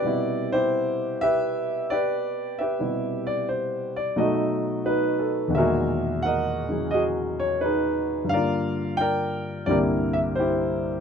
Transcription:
Already playing: G4 B4 D5
0.02 B2 C3 G3
0.07 E4
0.52 E4 G4 C5
1.21 G4 B4 E5
1.90 G4 B4 D5
2.59 G4 B4 E5
2.79 B2 C3 G3 E4
3.27 D5
3.49 C5
3.96 D5
4.16 B2 F#3 A3 D#4 F#4 A4 D#5
4.85 D#4 F#4 B4
5.19 A4
5.48 E2 B2
5.52 D#3 G#3 E5
5.56 A#2 F#4 G#4 A#4
6.23 A#4 D#5 F#5
6.69 C#3 E3 F#3 G#4
6.91 F#4 G#4 D#5
7.40 C#5
7.61 D#4 G#4 B4
8.25 G2 D3
8.29 A#3 F5
8.34 F4 A#4 D5
8.97 A#4 D5 G5
9.66 C2 G2 D3 G3 A#3 E4 G4 D5
9.70 A#4
10.13 E5
10.35 C5
10.40 E4 G4

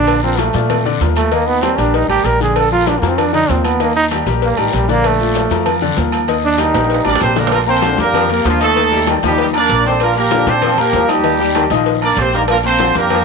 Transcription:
Already playing: A#1 D3 D4 D5
0.07 cowbell, high conga, low agogo, long guiro
0.23 F3 C4 F4 A#4, high conga
0.38 A3, cowbell, high conga, low agogo, short guiro
0.53 A#2 F3 F4 D5, cowbell, high conga, short guiro
0.69 cowbell, high conga, low conga, low agogo, long guiro
0.85 D3 D4 D5, high conga, low conga, low agogo
1.01 D#2 F3 F4 A#4, cowbell, high conga, low timbale, short guiro
1.16 A3, cowbell, high conga, low agogo, short guiro
1.31 D#3 A#3 D#4 D#5, cowbell, high conga, low agogo, long guiro
1.47 B3, high conga
1.63 G3 C4 G4 A#4, cowbell, high conga, low agogo, short guiro
1.78 A#1 G3 D4 G4 A#4, cowbell, high conga, low agogo, short guiro
1.94 D#4, cowbell, high conga, long guiro
2.08 A1 G3 G4 A#4, high conga, low agogo
2.24 A#1 A#4, cowbell, low timbale, low agogo, short guiro
2.40 D3 D4 G#4 D5, high conga, short guiro
2.56 A4, cowbell, high conga, low agogo, long guiro
2.71 F3 F4 A#4, high conga
2.87 D4, cowbell, high conga, low agogo, short guiro
2.99 F2 F3 A#3 F4 A#4, cowbell, high conga, short guiro
3.08 C4
3.18 D4, cowbell, high conga, low conga, low agogo, long guiro
3.33 D3 D4 D#4 D5, high conga, low agogo
3.49 D#2 F3 C4 F4 A#4, cowbell, high conga, low timbale, short guiro
3.64 B3, cowbell, high conga, low agogo, short guiro
3.80 D#3 A#3 D#4 D#5, cowbell, high conga, low agogo, long guiro
3.96 D#4, high conga
4.11 G3 G4 A#4, cowbell, high conga, low agogo, short guiro
4.26 A#1 G3 G4 A#4, cowbell, high conga, low agogo, short guiro
4.42 A#3, cowbell, high conga, long guiro
4.57 A1 D#3 G3 G4 A#4, high conga, low agogo
4.73 A#1 G3, cowbell, low timbale, low agogo, short guiro
4.88 D3 A#3 D4 D5, high conga, short guiro
5.04 A3, cowbell, high conga, low agogo, long guiro
5.20 F3 F4 D5
5.34 cowbell, high conga, low agogo, short guiro
5.50 F2 F3 F4 A#4, cowbell, high conga, short guiro
5.66 cowbell, high conga, low conga, low agogo, long guiro
5.81 D3 D4 D5, high conga, low conga, low agogo
5.97 D#2 F3 F4 A#4, cowbell, high conga, low timbale, short guiro
6.12 cowbell, low agogo, short guiro
6.28 D#3 D#4 D#5, cowbell, high conga, low agogo, long guiro
6.43 D4, high conga
6.58 G3 D#4 G4 A#4, cowbell, high conga, low agogo, short guiro
6.74 A#1 G3 G4 A#4, cowbell, high conga, high timbale, low agogo, short guiro
6.84 high timbale
6.90 cowbell, high conga, long guiro
6.94 high timbale
7.05 A1 G3 D4 G4 A#4 D5, high bongo, high conga, low agogo
7.15 low timbale
7.21 A#1 C4 G4 C5, cowbell, high bongo, low agogo, short guiro
7.36 D3 A#3 D4 G4 A#4 D5, low bongo, high conga, low timbale, short guiro
7.47 low timbale
7.51 A#3 F4 A#4, cowbell, high conga, low agogo, long guiro
7.67 A#3 C4 A4 A#4 C5 A#5, high conga
7.82 D3 F3 F4 F5, cowbell, high conga, low agogo, short guiro
7.98 F2 A#3 D4 G4 A#4 D5 D6, cowbell, high conga, short guiro
8.14 F3, cowbell, high conga, low conga, low agogo, long guiro
8.29 A#3 G4 A#4 A#5, high conga, low conga, low agogo
8.45 D#2 F3 D4 F4, cowbell, high conga, low timbale, short guiro
8.60 A3 D#4 A4 D#5 D#6, cowbell, low agogo, short guiro
8.76 D#3 D#4 D#5, cowbell, high conga, low agogo, long guiro
8.92 G3 G4 G5, high conga
9.07 D#3, cowbell, high conga, low agogo, short guiro
9.23 D#2 D#3 F3 G3 D#4 G4 D#5, cowbell, high conga, low agogo, short guiro
9.38 G3 D#4 G4, cowbell, high conga, long guiro
9.54 A#3 D4 A#4 D5 A#5, low agogo
9.69 A#1, cowbell, high conga, low agogo, short guiro
9.85 D#3 C4 D4 A4 C5 D5 D6, high conga, short guiro
10.00 A#3 F4 A#4, cowbell, high conga, low agogo, long guiro
10.17 A#3 G4 A#4 A#5
10.31 D3 F3 F4 F5, cowbell, high conga, low agogo, short guiro
10.46 A#2 C4 D4 A4 C5 D5 D6, cowbell, high conga, short guiro
10.62 F3, cowbell, high conga, low conga, low agogo, long guiro
10.77 A#3 G4 A#4 A#5, high conga, low conga, low agogo
10.93 D#2 F3, cowbell, high conga, low timbale, short guiro
11.08 G3 D#4 G4 D#5 D#6, cowbell, high conga, low agogo, short guiro
11.24 D#3 D#4 D#5, cowbell, low agogo, long guiro
11.39 G3 G4 G5
11.55 D#3, cowbell, high conga, low agogo, short guiro
11.70 A#1 D#3 F3 D#4 D#5, cowbell, high conga, low agogo, short guiro
11.86 cowbell, high conga, long guiro
12.02 A#3 D4 A#4 D5 A#5, high conga, low agogo
12.17 A#1 C4 G4 C5, cowbell, low timbale, low agogo, short guiro
12.32 D#3 A#3 D4 G4 A#4 D5 D6, high conga, short guiro
12.48 A#3 F4 A#4, cowbell, high conga, low agogo, long guiro
12.64 A#3 C4 A4 A#4 C5 A#5, high conga
12.78 D3 F3 F4 F5, cowbell, high conga, low agogo, short guiro
12.94 F2 A#3 D4 G4 A#4 D5 D6, cowbell, high conga, short guiro
13.09 F3, cowbell, high conga, low conga, low agogo, long guiro

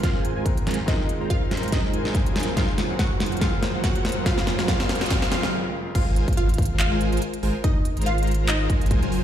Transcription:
Already playing: G#2 D#3 G#3 A#3 C4 F4 G#4 A#4 C5 F5, riser
0.03 F4 F5, kick, snare, closed hi-hat
0.15 G#3 F4 A#4 C5 G#5
0.25 closed hi-hat
0.36 G#3 F4 A#4 C5 G#5
0.45 D#3 G#3 A#3 C4 A#4, kick, closed hi-hat
0.57 closed hi-hat
0.67 G#3 F4 A#4 C5 G#5, snare, closed hi-hat
0.71 closed hi-hat
0.74 closed hi-hat
0.86 D#3 G#3 A#3 C4 D#4 F4 D#5, kick, snare, closed hi-hat
1.09 closed hi-hat
1.21 G#3 F4 A#4 C5 A#5
1.30 F4 F5, kick, closed hi-hat
1.51 snare, closed hi-hat
1.57 closed hi-hat
1.63 closed hi-hat
1.68 closed hi-hat
1.72 D#4 D#5, kick, snare, closed hi-hat
1.93 G#3 F4 A#4 C5 G#5, closed hi-hat
2.05 snare
2.14 C#3 G#3 A#3 C4 G#4, kick, closed hi-hat
2.26 F#3 F4 A#4 C5 G#5, closed hi-hat
2.36 F#2 A#3, snare, closed hi-hat
2.40 closed hi-hat
2.43 closed hi-hat
2.55 C#3 F#3 G#3 A#3 C4 F4 A#4 C5 F5 G#5, kick, snare, closed hi-hat
2.78 snare, closed hi-hat
2.90 F#3 F4 A#4 C5 F#5
2.99 F#4 F#5, kick, snare, closed hi-hat
3.20 snare, closed hi-hat
3.26 closed hi-hat
3.32 closed hi-hat
3.37 C#3 G#3, closed hi-hat
3.41 F#3 A#3 C4 F4 A#4 C5 F5 G#5, kick, snare, closed hi-hat
3.63 snare, closed hi-hat
3.74 F#3 F4 A#4 C5 F#5
3.84 F#4 F#5, kick, snare, closed hi-hat
3.95 closed hi-hat
4.05 snare, closed hi-hat
4.09 closed hi-hat
4.12 closed hi-hat
4.24 C#3 F#3 G#3 A#3 C4 F4 A#4 C5 F5 G#5, kick, snare, closed hi-hat, noise sweep
4.28 F4
4.38 snare
4.47 snare, closed hi-hat
4.59 F#3 F4 A#4 C5 F#5, snare
4.66 C#3 F#3 G#3 A#3 C4 F4 A#4 C5 F5 G#5, kick, snare, closed hi-hat
4.80 snare
4.89 snare, closed hi-hat
4.95 closed hi-hat
5.01 F#3 F4 A#4 C5 F#5, snare, closed hi-hat
5.06 C#3 G#3, closed hi-hat
5.10 F#3 A#3 C4 F4 A#4 C5 F5 G#5, kick, snare, closed hi-hat
5.22 snare
5.30 C#3 F#3 G#3 A#3 C4 F4 A#4 C5 F5 G#5, snare, closed hi-hat
5.34 F4
5.43 snare
5.95 G#1 G#3 F4 A#4 C5 F5 G#5, kick, closed hi-hat, crash
6.16 closed hi-hat
6.28 G#1 G#3 F4 A#4 C5 F5, kick, closed hi-hat
6.33 closed hi-hat
6.37 F4 F5, closed hi-hat
6.49 closed hi-hat
6.54 closed hi-hat
6.58 kick, closed hi-hat
6.62 closed hi-hat
6.65 closed hi-hat
6.80 F4 F5, clap, closed hi-hat
6.91 G#1 G#3 F4 A#4 C5 G#5
7.01 closed hi-hat
7.12 G#1 G#3 F4 A#4 C5 G#5, closed hi-hat
7.17 closed hi-hat
7.22 closed hi-hat
7.34 closed hi-hat
7.43 G#1 G#3 F4 A#4 C5 G#5, open hi-hat
7.64 D#4 D#5, kick, closed hi-hat
7.85 closed hi-hat
7.97 G#1 G#3 F4 A#4 C5 A#5, closed hi-hat
8.02 closed hi-hat
8.06 F4 F5, closed hi-hat
8.18 closed hi-hat
8.23 closed hi-hat
8.27 closed hi-hat
8.31 closed hi-hat
8.34 closed hi-hat
8.48 D#4 D#5, clap, closed hi-hat
8.70 G#1 G#3 F4 A#4 C5 G#5, kick, closed hi-hat
8.81 closed hi-hat
8.86 closed hi-hat
8.91 kick, closed hi-hat
9.02 F#1 F#3 F4 A#4 C5 G#5, closed hi-hat
9.12 open hi-hat

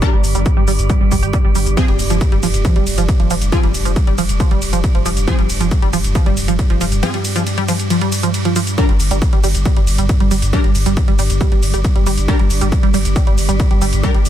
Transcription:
Already playing: G2 G3
0.02 G3 D4 A#4, kick, closed hi-hat, shaker
0.13 G1 G3
0.24 G1, open hi-hat, shaker
0.35 G1 G3, closed hi-hat, shaker
0.46 kick, closed hi-hat, shaker
0.57 G1 G3
0.68 G1 G3, open hi-hat, shaker
0.79 G1, closed hi-hat, shaker
0.90 G3, kick, closed hi-hat, shaker
1.01 G1 G3
1.11 G1 G3, kick, open hi-hat, shaker
1.23 G1 G4, closed hi-hat, shaker
1.33 G3, kick, closed hi-hat, shaker
1.44 G1 G3
1.55 G1 G3, open hi-hat, shaker
1.66 G1, closed hi-hat, shaker
1.77 F3 C4 G#4, kick, closed hi-hat, ride, shaker
1.88 F1 G3, ride
1.99 F1, open hi-hat, ride, shaker
2.10 F1 F3, closed hi-hat, ride, shaker
2.21 kick, closed hi-hat, ride, shaker
2.32 F1 G3, ride
2.43 F1 F3, open hi-hat, ride, shaker
2.54 F1, closed hi-hat, ride, shaker
2.65 F3, kick, closed hi-hat, ride, shaker
2.76 F1 G3, ride
2.87 F1, open hi-hat, ride, shaker
2.98 F1 F3, closed hi-hat, ride, shaker
3.09 kick, closed hi-hat, ride, shaker
3.20 F1 F3, ride
3.30 F1 F3, open hi-hat, ride, shaker
3.42 F1, closed hi-hat, ride, shaker
3.52 F3 C4 G#4, kick, closed hi-hat, ride, shaker
3.63 F1 G3, ride
3.74 F1, open hi-hat, ride, shaker
3.85 F1 F3, closed hi-hat, ride, shaker
3.96 kick, closed hi-hat, ride, shaker
4.07 F1 G3, ride
4.18 F1 F3, open hi-hat, ride, shaker
4.29 F1, closed hi-hat, ride, shaker
4.40 F3, kick, closed hi-hat, ride, shaker
4.51 F1 G3, ride
4.62 F1, open hi-hat, ride, shaker
4.73 F1 F3, closed hi-hat, ride, shaker
4.84 kick, closed hi-hat, ride, shaker
4.95 F1 F3, ride
5.06 F1 F3, open hi-hat, ride, shaker
5.17 F1, closed hi-hat, ride, shaker
5.28 F3 C4 G#4, kick, closed hi-hat, ride, shaker
5.39 F1 G3, ride
5.49 F1, open hi-hat, ride, shaker
5.60 F1 F3, closed hi-hat, ride, shaker
5.71 kick, closed hi-hat, ride, shaker
5.82 F1 G3, ride
5.93 F1 F3, open hi-hat, ride, shaker
6.04 F1, closed hi-hat, ride, shaker
6.15 F3, kick, closed hi-hat, ride, shaker
6.26 F1 G3, ride
6.37 F1, open hi-hat, ride, shaker
6.48 F1 F3, closed hi-hat, ride, shaker
6.59 kick, closed hi-hat, ride, shaker
6.70 F1 F3, ride
6.81 F1 F3, open hi-hat, ride, shaker
6.92 F1, closed hi-hat, ride, shaker
7.03 F3 C4 G#4, closed hi-hat, ride, shaker
7.14 G3, ride
7.25 open hi-hat, ride, shaker
7.36 F3, closed hi-hat, ride, shaker
7.47 closed hi-hat, ride, shaker
7.58 G3, ride
7.68 F3, open hi-hat, ride, shaker
7.80 closed hi-hat, ride, shaker
7.90 F3, closed hi-hat, ride, shaker
8.01 G3, ride
8.12 open hi-hat, ride, shaker
8.23 F3, closed hi-hat, ride, shaker
8.34 closed hi-hat, ride, shaker
8.45 F3, ride
8.56 F3, open hi-hat, ride, shaker
8.67 closed hi-hat, ride, shaker
8.78 G2 G3 D4 A#4, kick, closed hi-hat, ride, shaker
8.89 G1 G3, ride
9.00 G1, open hi-hat, ride, shaker
9.11 G1 G3, closed hi-hat, ride, shaker
9.22 kick, closed hi-hat, ride, shaker
9.33 G1 G3, ride
9.44 G1 G3, open hi-hat, ride, shaker
9.55 G1, closed hi-hat, ride, shaker
9.65 G3, kick, closed hi-hat, ride, shaker
9.76 G1 G3, ride
9.87 G1, open hi-hat, ride, shaker
9.98 G1 G3, closed hi-hat, ride, shaker
10.09 kick, closed hi-hat, ride, shaker
10.20 G1 G3, ride
10.31 G1 G3, open hi-hat, ride, shaker
10.42 G1, closed hi-hat, ride, shaker
10.53 G3 D4 A#4, kick, closed hi-hat, ride, shaker
10.64 G1 G3, ride
10.75 G1, open hi-hat, ride, shaker
10.86 G1 G3, closed hi-hat, ride, shaker
10.97 kick, closed hi-hat, ride, shaker
11.08 G1 G3, ride
11.19 G1 G3, open hi-hat, ride, shaker
11.30 G1, closed hi-hat, ride, shaker
11.41 G3, kick, closed hi-hat, ride, shaker
11.52 G1 G3, ride
11.63 G1, open hi-hat, ride, shaker
11.74 G1 G3, closed hi-hat, ride, shaker
11.85 kick, closed hi-hat, ride, shaker
11.96 G1 G3, ride
12.06 G1 G3, open hi-hat, ride, shaker
12.18 G1, closed hi-hat, ride, shaker
12.28 G3 D4 A#4, kick, closed hi-hat, ride, shaker
12.39 G1 G3, ride
12.50 G1, open hi-hat, ride, shaker
12.61 G1 G3, closed hi-hat, ride, shaker
12.72 kick, closed hi-hat, ride, shaker
12.83 G1 G3, ride
12.94 G1 G3, open hi-hat, ride, shaker
13.05 G1, closed hi-hat, ride, shaker
13.16 G3, kick, closed hi-hat, ride, shaker
13.27 G1 G3, ride
13.38 G1, open hi-hat, ride, shaker
13.49 G1 G3, closed hi-hat, ride, shaker
13.60 kick, closed hi-hat, ride, shaker
13.71 G1 G3, ride
13.82 G1 G3, open hi-hat, ride, shaker
13.93 G1, closed hi-hat, ride, shaker
14.03 G3 D4 A#4, kick, closed hi-hat, ride, shaker
14.14 G1 G3, ride
14.25 G1, open hi-hat, ride, shaker

